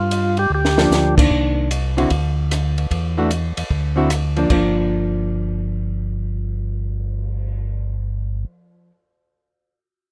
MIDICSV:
0, 0, Header, 1, 6, 480
1, 0, Start_track
1, 0, Tempo, 398671
1, 1572, Time_signature, 4, 2, 24, 8
1, 12175, End_track
2, 0, Start_track
2, 0, Title_t, "Tonewheel organ"
2, 0, Program_c, 0, 16
2, 0, Note_on_c, 0, 65, 74
2, 455, Note_off_c, 0, 65, 0
2, 470, Note_on_c, 0, 67, 77
2, 626, Note_off_c, 0, 67, 0
2, 657, Note_on_c, 0, 67, 76
2, 1386, Note_off_c, 0, 67, 0
2, 12175, End_track
3, 0, Start_track
3, 0, Title_t, "Hollow-body jazz guitar"
3, 0, Program_c, 1, 26
3, 933, Note_on_c, 1, 53, 56
3, 940, Note_on_c, 1, 58, 64
3, 950, Note_on_c, 1, 62, 62
3, 1381, Note_off_c, 1, 53, 0
3, 1384, Note_off_c, 1, 58, 0
3, 1389, Note_off_c, 1, 62, 0
3, 1409, Note_on_c, 1, 51, 50
3, 1421, Note_on_c, 1, 58, 48
3, 1425, Note_on_c, 1, 62, 59
3, 2020, Note_off_c, 1, 51, 0
3, 2026, Note_off_c, 1, 58, 0
3, 2028, Note_off_c, 1, 62, 0
3, 2372, Note_on_c, 1, 50, 50
3, 2380, Note_on_c, 1, 60, 57
3, 2380, Note_on_c, 1, 64, 56
3, 2385, Note_on_c, 1, 66, 62
3, 2518, Note_off_c, 1, 50, 0
3, 2522, Note_off_c, 1, 60, 0
3, 2522, Note_off_c, 1, 64, 0
3, 2524, Note_off_c, 1, 66, 0
3, 3823, Note_on_c, 1, 52, 53
3, 3828, Note_on_c, 1, 57, 51
3, 3833, Note_on_c, 1, 62, 56
3, 3835, Note_on_c, 1, 66, 58
3, 3964, Note_off_c, 1, 52, 0
3, 3967, Note_off_c, 1, 57, 0
3, 3969, Note_off_c, 1, 62, 0
3, 3970, Note_off_c, 1, 66, 0
3, 4765, Note_on_c, 1, 50, 59
3, 4774, Note_on_c, 1, 60, 61
3, 4783, Note_on_c, 1, 66, 62
3, 4785, Note_on_c, 1, 64, 58
3, 4916, Note_off_c, 1, 50, 0
3, 4921, Note_off_c, 1, 60, 0
3, 4925, Note_off_c, 1, 66, 0
3, 4926, Note_off_c, 1, 64, 0
3, 5257, Note_on_c, 1, 53, 54
3, 5266, Note_on_c, 1, 58, 54
3, 5277, Note_on_c, 1, 62, 60
3, 5400, Note_off_c, 1, 53, 0
3, 5414, Note_on_c, 1, 53, 58
3, 5418, Note_off_c, 1, 58, 0
3, 5432, Note_on_c, 1, 58, 58
3, 5441, Note_off_c, 1, 62, 0
3, 5455, Note_on_c, 1, 62, 57
3, 10713, Note_off_c, 1, 53, 0
3, 10731, Note_off_c, 1, 58, 0
3, 10754, Note_off_c, 1, 62, 0
3, 12175, End_track
4, 0, Start_track
4, 0, Title_t, "Tonewheel organ"
4, 0, Program_c, 2, 16
4, 0, Note_on_c, 2, 43, 73
4, 561, Note_off_c, 2, 43, 0
4, 598, Note_on_c, 2, 38, 75
4, 1051, Note_off_c, 2, 38, 0
4, 1082, Note_on_c, 2, 38, 69
4, 1534, Note_off_c, 2, 38, 0
4, 1575, Note_on_c, 2, 36, 70
4, 2488, Note_off_c, 2, 36, 0
4, 2538, Note_on_c, 2, 38, 83
4, 3450, Note_off_c, 2, 38, 0
4, 3499, Note_on_c, 2, 40, 73
4, 4249, Note_off_c, 2, 40, 0
4, 4300, Note_on_c, 2, 40, 34
4, 4380, Note_off_c, 2, 40, 0
4, 4460, Note_on_c, 2, 38, 72
4, 5372, Note_off_c, 2, 38, 0
4, 5418, Note_on_c, 2, 31, 66
4, 10171, Note_off_c, 2, 31, 0
4, 12175, End_track
5, 0, Start_track
5, 0, Title_t, "Cymbal swell"
5, 5733, Note_on_c, 9, 59, 38
5, 9158, Note_off_c, 9, 59, 0
5, 12175, End_track
6, 0, Start_track
6, 0, Title_t, "Drums"
6, 135, Note_on_c, 9, 44, 55
6, 135, Note_on_c, 9, 51, 53
6, 255, Note_off_c, 9, 44, 0
6, 255, Note_off_c, 9, 51, 0
6, 445, Note_on_c, 9, 51, 41
6, 565, Note_off_c, 9, 51, 0
6, 781, Note_on_c, 9, 38, 50
6, 902, Note_off_c, 9, 38, 0
6, 939, Note_on_c, 9, 38, 67
6, 1059, Note_off_c, 9, 38, 0
6, 1106, Note_on_c, 9, 44, 55
6, 1110, Note_on_c, 9, 38, 48
6, 1226, Note_off_c, 9, 44, 0
6, 1231, Note_off_c, 9, 38, 0
6, 1418, Note_on_c, 9, 36, 72
6, 1430, Note_on_c, 9, 49, 67
6, 1538, Note_off_c, 9, 36, 0
6, 1551, Note_off_c, 9, 49, 0
6, 1576, Note_on_c, 9, 36, 33
6, 1697, Note_off_c, 9, 36, 0
6, 2057, Note_on_c, 9, 44, 49
6, 2057, Note_on_c, 9, 51, 62
6, 2177, Note_off_c, 9, 44, 0
6, 2177, Note_off_c, 9, 51, 0
6, 2384, Note_on_c, 9, 51, 44
6, 2504, Note_off_c, 9, 51, 0
6, 2532, Note_on_c, 9, 51, 58
6, 2537, Note_on_c, 9, 36, 31
6, 2652, Note_off_c, 9, 51, 0
6, 2658, Note_off_c, 9, 36, 0
6, 3026, Note_on_c, 9, 44, 56
6, 3026, Note_on_c, 9, 51, 54
6, 3031, Note_on_c, 9, 37, 55
6, 3147, Note_off_c, 9, 44, 0
6, 3147, Note_off_c, 9, 51, 0
6, 3151, Note_off_c, 9, 37, 0
6, 3345, Note_on_c, 9, 51, 39
6, 3465, Note_off_c, 9, 51, 0
6, 3501, Note_on_c, 9, 36, 32
6, 3506, Note_on_c, 9, 51, 52
6, 3622, Note_off_c, 9, 36, 0
6, 3627, Note_off_c, 9, 51, 0
6, 3980, Note_on_c, 9, 44, 45
6, 3980, Note_on_c, 9, 51, 53
6, 4101, Note_off_c, 9, 44, 0
6, 4101, Note_off_c, 9, 51, 0
6, 4302, Note_on_c, 9, 51, 64
6, 4422, Note_off_c, 9, 51, 0
6, 4461, Note_on_c, 9, 36, 34
6, 4581, Note_off_c, 9, 36, 0
6, 4938, Note_on_c, 9, 44, 56
6, 4938, Note_on_c, 9, 51, 56
6, 4943, Note_on_c, 9, 37, 55
6, 5058, Note_off_c, 9, 44, 0
6, 5058, Note_off_c, 9, 51, 0
6, 5063, Note_off_c, 9, 37, 0
6, 5255, Note_on_c, 9, 51, 36
6, 5376, Note_off_c, 9, 51, 0
6, 5416, Note_on_c, 9, 49, 52
6, 5420, Note_on_c, 9, 36, 47
6, 5537, Note_off_c, 9, 49, 0
6, 5540, Note_off_c, 9, 36, 0
6, 12175, End_track
0, 0, End_of_file